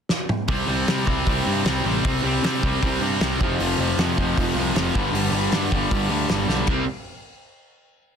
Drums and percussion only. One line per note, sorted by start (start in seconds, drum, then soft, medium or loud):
0.09 snare medium
0.29 mid tom medium
0.48 kick loud
0.48 open hi-hat soft
0.88 snare loud
0.88 open hi-hat medium
1.07 kick medium
1.26 kick medium
1.26 open hi-hat medium
1.65 snare loud
1.65 open hi-hat medium
2.05 kick loud
2.05 open hi-hat medium
2.44 snare loud
2.44 open hi-hat medium
2.63 kick medium
2.82 kick medium
2.82 open hi-hat soft
3.21 snare loud
3.21 open hi-hat soft
3.41 kick loud
3.60 open hi-hat medium
3.99 snare loud
3.99 open hi-hat medium
4.18 kick medium
4.38 kick medium
4.38 open hi-hat medium
4.76 snare loud
4.76 open hi-hat medium
4.95 kick loud
5.15 open hi-hat medium
5.52 snare loud
5.52 open hi-hat medium
5.72 kick medium
5.91 kick loud
5.91 open hi-hat medium
6.29 snare loud
6.29 open hi-hat medium
6.49 snare medium
6.67 kick loud
6.67 crash medium